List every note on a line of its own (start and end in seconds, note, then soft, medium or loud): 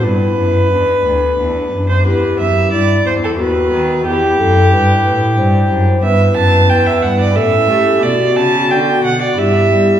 0.00 0.36 G2 medium
0.00 0.34 G2 soft
0.00 0.34 B3 soft
0.00 0.35 D4 soft
0.00 0.09 F4 medium
0.00 2.01 G4 soft
0.00 1.89 B4 medium
0.08 0.71 E4 medium
0.37 0.70 F#2 soft
0.37 0.68 F#2 soft
0.71 1.04 E2 medium
0.71 1.02 E2 soft
0.71 2.03 D4 medium
1.05 1.38 D2 soft
1.05 1.35 D2 soft
1.38 1.71 E2 medium
1.38 1.69 E2 soft
1.72 2.02 F#2 soft
1.72 2.07 F#2 medium
1.89 2.06 C5 medium
2.02 2.40 E2 medium
2.02 2.36 B3 soft
2.02 3.34 E4 soft
2.02 3.35 G4 soft
2.06 2.36 E2 soft
2.06 2.71 G4 medium
2.06 2.39 B4 medium
2.39 2.72 F#2 medium
2.39 2.69 F#2 soft
2.39 2.71 E5 medium
2.72 3.05 G2 medium
2.72 3.03 G2 soft
2.72 3.38 E4 medium
2.72 3.05 D5 medium
3.06 3.41 E2 medium
3.06 3.36 E2 soft
3.06 3.13 C5 medium
3.24 3.30 A4 medium
3.35 3.99 B3 soft
3.35 4.03 F#4 soft
3.35 4.03 A4 soft
3.39 3.73 D#2 medium
3.39 3.70 D#2 soft
3.39 4.05 F#4 medium
3.39 4.05 B4 medium
3.73 4.03 D#3 soft
3.73 4.06 D#3 medium
4.01 4.36 B3 soft
4.01 5.98 E4 soft
4.01 5.99 G4 soft
4.06 4.36 E2 soft
4.06 4.39 E2 medium
4.06 5.84 G4 medium
4.06 4.41 G4 medium
4.39 4.69 F#2 soft
4.39 4.72 F#2 medium
4.39 4.72 A4 medium
4.72 5.02 G2 soft
4.72 5.04 G2 medium
4.72 5.14 B4 medium
5.05 5.34 A2 soft
5.05 5.37 A2 medium
5.38 5.67 G2 soft
5.38 5.70 G2 medium
5.38 6.05 C5 medium
5.71 6.03 F#2 medium
5.71 6.00 F#2 medium
6.00 6.34 G2 medium
6.00 7.30 B3 soft
6.00 7.31 E4 soft
6.00 7.32 G4 soft
6.00 7.37 B4 medium
6.00 6.34 E5 medium
6.04 6.33 G2 soft
6.36 6.69 F#2 medium
6.36 6.67 F#2 soft
6.36 6.71 A5 medium
6.69 7.04 E2 medium
6.69 7.00 E2 soft
6.69 6.88 G5 medium
6.87 7.04 E5 medium
7.03 7.33 G2 medium
7.03 7.38 G2 medium
7.03 7.19 F#5 medium
7.21 7.37 D5 medium
7.31 7.98 C#4 soft
7.31 7.99 E4 soft
7.31 8.00 G4 soft
7.36 7.66 A2 soft
7.36 7.69 A2 medium
7.36 7.71 A4 medium
7.36 8.05 E5 medium
7.69 8.00 A3 soft
7.69 8.04 A3 medium
7.69 8.05 G4 medium
7.98 9.31 B3 soft
7.98 9.32 F#4 soft
8.02 8.33 B2 soft
8.02 8.35 B2 medium
8.02 9.39 F#4 medium
8.02 8.38 D5 medium
8.35 8.66 C#3 soft
8.35 8.71 C#3 medium
8.35 8.72 A5 medium
8.69 9.00 D3 medium
8.69 9.03 D3 medium
8.69 9.04 G5 medium
9.03 9.34 B2 soft
9.03 9.37 B2 medium
9.03 9.21 F#5 medium
9.22 9.40 D5 medium
9.33 9.98 B3 soft
9.33 10.00 E4 soft
9.37 9.68 G2 soft
9.37 9.71 G2 medium
9.37 10.00 G4 medium
9.37 10.00 E5 medium
9.71 10.00 G3 medium